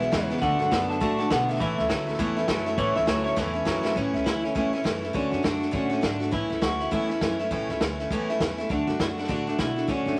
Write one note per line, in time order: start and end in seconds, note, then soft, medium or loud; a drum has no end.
0.00 0.11 B1 medium
0.00 0.11 E2 medium
0.00 0.12 B2 loud
0.00 0.10 E3 medium
0.00 0.11 G#3 medium
0.00 0.12 B3 medium
0.00 0.12 E4 medium
0.00 0.28 E5 loud
0.00 snare soft
0.12 0.39 E2 medium
0.12 0.41 E2 medium
0.12 0.40 C#3 loud
0.12 0.30 E3 medium
0.12 0.30 G#3 medium
0.12 0.30 B3 medium
0.12 0.29 E4 medium
0.12 kick medium
0.12 snare loud
0.12 hi-hat pedal medium
0.30 0.41 E3 medium
0.30 0.42 G#3 medium
0.30 0.42 B3 medium
0.30 0.42 E4 medium
0.30 snare soft
0.36 snare soft
0.42 0.59 D2 loud
0.42 0.60 D3 medium
0.42 0.60 A3 medium
0.42 0.59 D4 medium
0.42 0.58 F#4 medium
0.42 0.88 F#5 loud
0.42 kick loud
0.42 snare soft
0.59 0.71 F#2 loud
0.59 0.70 A3 soft
0.59 0.72 D4 medium
0.59 0.71 F#4 medium
0.59 snare soft
0.71 1.00 F#2 loud
0.71 0.89 D3 medium
0.71 0.90 A3 medium
0.71 0.99 B3 loud
0.71 0.89 D4 medium
0.71 0.87 F#4 medium
0.71 kick medium
0.71 snare loud
0.71 hi-hat pedal medium
0.88 1.00 A3 soft
0.88 1.00 D4 soft
0.88 1.01 F#4 medium
0.88 1.18 A5 loud
0.88 snare soft
1.00 1.29 A2 medium
1.00 1.19 D3 medium
1.00 1.19 A3 medium
1.00 1.19 D4 medium
1.00 1.17 F#4 loud
1.00 kick loud
1.00 snare soft
1.19 1.30 A3 soft
1.19 1.31 D4 medium
1.19 1.30 F#4 medium
1.19 1.30 A5 medium
1.19 snare soft
1.30 1.59 B2 loud
1.30 1.48 D3 medium
1.30 1.49 A3 medium
1.30 1.58 B3 medium
1.30 1.48 D4 medium
1.30 1.47 F#4 medium
1.30 1.49 F#5 loud
1.30 kick medium
1.30 snare loud
1.30 hi-hat pedal medium
1.49 1.60 A3 soft
1.49 1.60 D4 medium
1.49 1.60 F#4 medium
1.49 1.60 E5 loud
1.49 snare soft
1.55 snare soft
1.60 1.77 A1 medium
1.60 1.78 A2 medium
1.60 1.78 E3 medium
1.60 1.79 A3 medium
1.60 1.79 C#4 medium
1.60 1.77 E4 medium
1.60 2.18 E5 medium
1.60 kick loud
1.60 snare soft
1.78 1.89 C#2 loud
1.78 1.89 A3 medium
1.78 1.90 C#4 medium
1.78 1.90 E4 medium
1.78 snare soft
1.89 2.18 D2 loud
1.89 2.16 A2 medium
1.89 2.07 E3 medium
1.89 2.17 F#3 medium
1.89 2.08 A3 medium
1.89 2.07 C#4 medium
1.89 2.05 E4 medium
1.89 kick medium
1.89 snare loud
1.89 hi-hat pedal medium
2.07 2.19 A3 medium
2.07 2.19 C#4 medium
2.07 2.19 E4 medium
2.07 snare soft
2.13 snare soft
2.19 2.47 E2 loud
2.19 2.37 A2 loud
2.19 2.37 E3 loud
2.19 2.37 A3 loud
2.19 2.37 C#4 loud
2.19 2.35 E4 loud
2.19 kick loud
2.19 snare soft
2.37 2.48 A3 medium
2.37 2.49 C#4 medium
2.37 2.48 E4 medium
2.37 snare soft
2.48 2.76 F#2 loud
2.48 2.76 A2 medium
2.48 2.66 E3 medium
2.48 2.76 F#3 medium
2.48 2.67 A3 medium
2.48 2.66 C#4 medium
2.48 2.65 E4 medium
2.48 kick medium
2.48 snare loud
2.48 hi-hat pedal medium
2.66 2.77 A3 medium
2.66 2.78 C#4 medium
2.66 2.78 E4 medium
2.66 snare soft
2.77 2.95 A1 loud
2.77 2.96 A2 medium
2.77 2.96 E3 medium
2.77 2.96 A3 medium
2.77 2.96 C#4 medium
2.77 2.94 E4 medium
2.77 2.95 C#5 loud
2.77 kick loud
2.77 snare soft
2.95 3.07 C#2 loud
2.95 3.06 A3 soft
2.95 3.07 C#4 medium
2.95 3.07 E4 medium
2.95 3.07 E5 loud
2.95 snare soft
3.06 3.35 D2 loud
3.06 3.35 A2 medium
3.06 3.25 E3 medium
3.06 3.35 F#3 medium
3.06 3.25 A3 medium
3.06 3.25 C#4 medium
3.06 3.23 E4 medium
3.06 3.23 C#5 medium
3.06 kick medium
3.06 snare loud
3.06 hi-hat pedal loud
3.24 3.36 A3 soft
3.24 3.36 C#4 medium
3.24 3.36 E4 medium
3.24 3.36 C#5 loud
3.24 snare soft
3.36 3.65 E2 loud
3.36 3.55 A2 loud
3.36 3.55 E3 medium
3.36 3.55 A3 medium
3.36 3.54 C#4 loud
3.36 3.52 E4 medium
3.36 kick loud
3.36 snare medium
3.53 3.65 A3 medium
3.53 3.66 C#4 medium
3.53 3.66 E4 medium
3.65 3.94 F#2 medium
3.65 3.94 A2 medium
3.65 3.84 E3 medium
3.65 3.94 F#3 loud
3.65 3.84 A3 medium
3.65 3.84 C#4 medium
3.65 3.83 E4 medium
3.65 kick medium
3.65 snare loud
3.65 hi-hat pedal medium
3.84 3.96 A3 medium
3.84 3.97 C#4 medium
3.84 3.96 E4 medium
3.84 snare medium
3.96 4.13 A1 loud
3.96 4.14 A2 medium
3.96 4.14 E3 medium
3.96 4.15 A3 medium
3.96 4.27 C#4 medium
3.96 4.14 C#4 medium
3.96 4.13 E4 medium
3.96 kick loud
3.96 snare soft
4.14 4.25 C#2 medium
4.14 4.24 A3 soft
4.14 4.25 C#4 medium
4.14 4.26 E4 medium
4.14 snare soft
4.24 4.54 D2 medium
4.24 4.43 E3 medium
4.24 4.44 A3 medium
4.24 4.43 C#4 medium
4.24 4.43 E4 medium
4.24 4.41 E4 medium
4.24 kick medium
4.24 snare loud
4.24 hi-hat pedal medium
4.42 4.54 A3 soft
4.42 4.55 C#4 medium
4.42 4.55 C#4 soft
4.42 4.55 E4 medium
4.42 snare soft
4.55 4.83 E2 medium
4.55 4.73 A2 medium
4.55 4.73 E3 medium
4.55 4.73 A3 medium
4.55 4.73 C#4 medium
4.55 4.72 E4 medium
4.55 kick loud
4.55 snare soft
4.73 4.84 A3 medium
4.73 4.84 C#4 medium
4.73 4.79 C#4 medium
4.73 4.85 E4 medium
4.73 snare soft
4.84 5.13 F#2 loud
4.84 5.02 E3 medium
4.84 5.03 A3 medium
4.84 5.02 C#4 medium
4.84 5.14 E4 medium
4.84 5.00 E4 medium
4.84 kick medium
4.84 snare loud
4.84 hi-hat pedal medium
5.02 5.13 A3 soft
5.02 5.15 C#4 soft
5.02 5.14 E4 medium
5.02 snare soft
5.13 5.32 D2 medium
5.13 5.32 D3 medium
5.13 5.32 A3 medium
5.13 5.44 C#4 medium
5.13 5.32 D4 medium
5.13 5.30 F#4 medium
5.13 kick loud
5.13 snare soft
5.31 5.43 F#2 medium
5.31 5.43 A3 soft
5.31 5.43 D4 medium
5.31 5.44 F#4 medium
5.31 snare soft
5.43 5.72 F#2 medium
5.43 5.61 D3 medium
5.43 5.61 A3 medium
5.43 5.60 D4 medium
5.43 5.72 D4 medium
5.43 5.59 F#4 medium
5.43 kick medium
5.43 snare loud
5.43 hi-hat pedal medium
5.60 5.71 A3 soft
5.60 5.72 D4 soft
5.60 5.72 F#4 soft
5.60 snare soft
5.71 6.02 A2 medium
5.71 5.91 D3 medium
5.71 5.91 A3 medium
5.71 6.03 C#4 medium
5.71 5.90 D4 medium
5.71 5.88 F#4 loud
5.71 kick loud
5.71 snare soft
5.90 6.01 A3 soft
5.90 6.02 D4 medium
5.90 6.02 F#4 medium
5.90 snare soft
6.01 6.31 G#1 medium
6.01 6.20 D3 medium
6.01 6.21 A3 medium
6.01 6.20 D4 medium
6.01 6.34 D4 medium
6.01 6.19 F#4 medium
6.01 kick medium
6.01 snare loud
6.01 hi-hat pedal medium
6.20 6.31 A3 soft
6.20 6.32 D4 medium
6.20 6.32 F#4 medium
6.20 snare soft
6.31 6.50 A1 medium
6.31 6.50 A2 medium
6.31 6.50 E3 medium
6.31 6.51 A3 medium
6.31 6.49 C#4 medium
6.31 6.62 E4 loud
6.31 6.49 E4 medium
6.31 kick loud
6.31 snare soft
6.50 6.62 C#2 loud
6.50 6.61 A3 soft
6.50 6.62 C#4 soft
6.50 6.62 E4 medium
6.50 snare soft
6.61 6.90 D2 medium
6.61 6.80 E3 medium
6.61 6.81 A3 medium
6.61 6.80 C#4 medium
6.61 6.79 E4 medium
6.61 6.91 F#4 loud
6.61 kick medium
6.61 snare loud
6.61 hi-hat pedal medium
6.80 6.91 A3 soft
6.80 6.91 C#4 medium
6.80 6.92 E4 medium
6.80 snare soft
6.91 7.20 E2 medium
6.91 7.10 A2 medium
6.91 7.10 E3 medium
6.91 7.10 A3 medium
6.91 7.10 C#4 medium
6.91 7.36 E4 loud
6.91 7.08 E4 loud
6.91 kick loud
6.91 snare soft
7.09 7.21 A3 soft
7.09 7.21 C#4 medium
7.09 7.21 E4 medium
7.09 snare soft
7.21 7.50 F#2 medium
7.21 7.39 E3 medium
7.21 7.40 A3 medium
7.21 7.39 C#4 medium
7.21 7.38 E4 medium
7.21 kick medium
7.21 snare loud
7.21 hi-hat pedal medium
7.39 7.50 A3 medium
7.39 7.51 C#4 medium
7.39 7.51 E4 medium
7.39 snare soft
7.51 7.68 A1 medium
7.51 7.69 A2 medium
7.51 7.69 E3 medium
7.51 7.69 A3 medium
7.51 7.70 C#4 medium
7.51 7.69 E4 medium
7.51 kick loud
7.51 snare soft
7.69 7.80 C#2 medium
7.69 7.81 A3 medium
7.69 7.82 C#4 medium
7.69 7.81 E4 medium
7.69 snare soft
7.80 8.09 D2 medium
7.80 7.99 E3 medium
7.80 8.00 A3 medium
7.80 8.00 C#4 medium
7.80 7.98 E4 medium
7.80 kick medium
7.80 snare loud
7.80 hi-hat pedal medium
7.99 8.11 A3 medium
7.99 8.12 C#4 medium
7.99 8.11 E4 medium
7.99 snare soft
8.10 8.39 E2 medium
8.10 8.29 A2 medium
8.10 8.29 E3 loud
8.10 8.30 A3 loud
8.10 8.30 C#4 loud
8.10 8.28 E4 medium
8.10 kick loud
8.10 snare soft
8.29 8.41 A3 medium
8.29 8.41 C#4 medium
8.29 8.41 E4 medium
8.29 snare soft
8.40 8.68 E2 medium
8.40 8.59 E3 medium
8.40 8.59 A3 medium
8.40 8.59 C#4 medium
8.40 8.57 E4 medium
8.40 kick medium
8.40 snare loud
8.40 hi-hat pedal medium
8.58 8.69 A3 medium
8.58 8.70 C#4 medium
8.58 8.70 E4 medium
8.58 snare soft
8.69 8.87 D2 medium
8.69 8.88 D3 medium
8.69 8.88 A3 medium
8.69 8.88 D4 medium
8.69 9.01 D4 medium
8.69 8.86 F#4 medium
8.69 kick loud
8.69 snare soft
8.87 8.99 F#2 loud
8.87 8.99 A3 soft
8.87 9.00 D4 soft
8.87 8.99 F#4 medium
8.87 snare soft
8.99 9.28 F#2 medium
8.99 9.17 D3 medium
8.99 9.18 A3 medium
8.99 9.18 D4 medium
8.99 9.06 E4 medium
8.99 9.17 F#4 medium
8.99 kick medium
8.99 snare loud
8.99 hi-hat pedal medium
9.18 9.28 A3 soft
9.18 9.29 D4 soft
9.18 9.29 D4 medium
9.18 9.29 F#4 medium
9.18 snare soft
9.24 snare soft
9.28 9.57 A2 medium
9.28 9.47 D3 medium
9.28 9.47 A3 medium
9.28 9.47 D4 medium
9.28 9.60 D4 medium
9.28 9.46 F#4 medium
9.28 kick loud
9.28 snare soft
9.47 9.58 A3 soft
9.47 9.59 D4 medium
9.47 9.59 F#4 medium
9.47 snare soft
9.58 9.87 B2 medium
9.58 9.77 D3 medium
9.58 9.77 A3 medium
9.58 9.76 D4 medium
9.58 9.89 E4 medium
9.58 9.75 F#4 medium
9.58 kick medium
9.58 snare medium
9.58 hi-hat pedal medium
9.76 9.87 A3 soft
9.76 9.88 D4 medium
9.76 9.88 F#4 medium
9.76 snare soft
9.88 10.06 D2 medium
9.88 10.06 D3 medium
9.88 10.07 A3 medium
9.88 10.18 C#4 medium
9.88 10.06 D4 medium
9.88 10.04 F#4 medium
9.88 kick loud
9.88 snare soft
10.06 10.17 F#2 medium
10.06 10.16 A3 soft
10.06 10.17 D4 medium
10.06 10.18 F#4 medium
10.06 snare soft